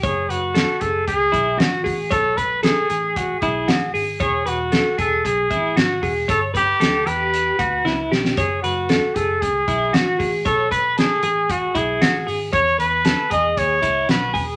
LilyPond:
<<
  \new Staff \with { instrumentName = "Clean electric guitar" } { \time 4/4 \key e \major \tempo 4 = 115 cis''8 b'8 a'8 gis'4 e'8 fis'8 gis'8 | cis''8 b'8 a'8 gis'4 e'8 fis'8 gis'8 | cis''8 b'8 a'8 gis'4 e'8 fis'8 gis'8 | cis''8 b'8 a'8 g'4 fis'8 e'8 g'8 |
cis''8 b'8 a'8 gis'4 e'8 fis'8 gis'8 | cis''8 b'8 a'8 gis'4 e'8 fis'8 gis'8 | cis''8 b'8 a'8 gis'4 e'8 fis'8 gis'8 | }
  \new Staff \with { instrumentName = "Trumpet" } { \time 4/4 \key e \major gis'8 fis'4 a'8 gis'4 fis'8. r16 | a'8 b'8 gis'4 fis'8 gis'4 r8 | gis'8 fis'4 a'8 gis'4 fis'8. r16 | a'8 g'4 b'2 r8 |
gis'8 fis'4 a'8 gis'4 fis'8. r16 | a'8 b'8 gis'4 fis'8 gis'4 r8 | cis''8 b'4 dis''8 cis''4 b'8. r16 | }
  \new Staff \with { instrumentName = "Picked electric bass" } { \clef bass \time 4/4 \key e \major fis,,8 fis,,8. r16 fis,,8 cis,8 b,,8 a,,8 a,,8 | b,,4. a,,4 b,,8 a,,8 gis,,8 | e,,8 e,,8. r16 e,,8 b,,8 a,,8 gis,,8 e,,8 | g,,4 d,8 e,4 d,8 cis,8 b,,8 |
fis,,8 fis,,8. r16 fis,,8 cis,8 b,,8 a,,8 a,,8 | b,,4. a,,4 b,,8 a,,8 gis,,8 | e,8 e,8. r16 e,8 dis,8 cis,8 b,,8 e,,8 | }
  \new DrumStaff \with { instrumentName = "Drums" } \drummode { \time 4/4 <hh bd>8 hh8 <hh sn>8 <hh bd>8 <hh bd>8 <hh bd>8 <hh sn>8 <hho bd>8 | <hh bd>8 <hh bd>8 <hh sn>8 hh8 <hh bd>8 <hh bd>8 <hh sn>8 hho8 | <hh bd>8 hh8 <hh sn>8 <hh bd>8 <hh bd>8 <hh bd>8 <hh sn>8 <hho bd>8 | <hh bd>8 <hh bd>8 <hh sn>8 hh8 hh8 <hh bd>8 sn8 sn16 sn16 |
<hh bd>8 hh8 <hh sn>8 <hh bd>8 <hh bd>8 <hh bd>8 <hh sn>8 <hho bd>8 | <hh bd>8 <hh bd>8 <hh sn>8 hh8 <hh bd>8 <hh bd>8 <hh sn>8 hho8 | <hh bd>8 hh8 <hh sn>8 <hh bd>8 <hh bd>8 <hh bd>8 <hh sn>8 <hho bd>8 | }
>>